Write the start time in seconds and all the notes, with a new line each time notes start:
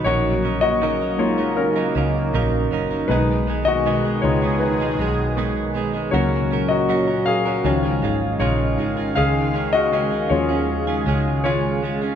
Already playing: F#3 D#4
0.04 A#1 A#2 C#3 D#3 F#3 A#3 C#4 D#4 F#4 A#4 C#5
0.43 F#3 C#4 D#4 A#4
0.61 F#4 D#5
0.81 A#2 D#3 F#3 C#4 D#4 A#4
1.00 F#3 C#4 D#4 A#4
1.18 G#3 A#3 D#4 F4 C#5
1.38 F#3 C#4 D#4 A#4
1.57 C#4 A#4
1.76 F#3 C#4 D#4 A#4
1.95 C#2 F#3 C#4 D#4 A#4
2.33 A#1 A#2 D#3 F#3 C#4 D#4 A#4
2.71 F#1 F#3 C#4 D#4 A#4
2.90 F#3 C#4 D#4 A#4
3.08 B1 B2 D#3 G#3 B3 D#4 G#4 B4
3.47 G#3 B3 D#4 G#4
3.65 F#4 D#5
3.86 B2 D#3 G#3 B3 D#4 G#4
4.04 G#3 B3 D#4 G#4
4.22 C#2 G#3 B3 D#4 F4 C#5
4.42 G#3 B3 D#4 G#4
4.59 D#4 B4
4.80 G#3 B3 D#4 G#4
4.99 B1 G#3 B3 D#4 G#4
5.37 B2 D#3 G#3 B3 D#4 G#4
5.74 G#3 B3 D#4 G#4
5.94 G#3 B3 D#4 G#4
6.11 C#2 A#2 C#3 F#3 A#3 C#4 F#4 A#4 C#5
6.51 F#3 C#4 F#4 A#4
6.69 F#4 D#5
6.89 C#3 F#3 C#4 F#4 A#4
7.07 C#4 F#4 A#4
7.26 G#4 F5
7.45 C#4 F#4 A#4
7.64 C#2 C#3 D#3 F3 G#3 C#4 D#4 F4 G#4 F5
7.83 D#4 F4 G#4
8.02 G#1 G#3 D#4 F4 G#4
8.40 A#1 C#3 G#3 D#4 F4 G#4 C#5
8.78 G#1 G#3 D#4 F4 G#4
8.97 D#4 F4 G#4
9.16 C#2 C#3 G#3 C#4 F4 G#4 F5
9.54 G#3 C#4 F4 G#4
9.73 F#4 D#5
9.92 C#3 G#3 C#4 F4 G#4
10.11 C#4 F4 G#4
10.29 D#2 F3 G#3 C#4 F4 C#5
10.49 C#4 F4 G#4
10.87 C#4 F4 G#4
11.06 C#2 G#3 C#4 F4 G#4
11.44 C#3 G#3 C#4 F4 G#4 C#5
11.83 G#3 C#4 F4 G#4
12.02 C#4 F4 G#4